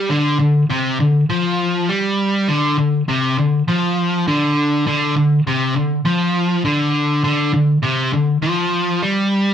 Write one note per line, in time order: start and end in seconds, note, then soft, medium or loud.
0.10 0.38 D3 loud
0.39 0.64 D3 medium
0.70 0.99 C3 loud
1.00 1.24 D3 medium
1.30 1.88 F3 loud
1.89 2.48 G3 medium
2.49 2.77 D3 loud
2.78 3.02 D3 medium
3.08 3.37 C3 loud
3.38 3.62 D3 medium
3.68 4.26 F3 loud
4.28 4.86 D3 loud
4.87 5.15 D3 loud
5.17 5.40 D3 medium
5.47 5.75 C3 loud
5.76 5.99 D3 medium
6.05 6.64 F3 loud
6.65 7.23 D3 loud
7.24 7.52 D3 loud
7.54 7.77 D3 medium
7.83 8.12 C3 loud
8.13 8.37 D3 medium
8.42 9.01 F3 loud
9.02 9.54 G3 loud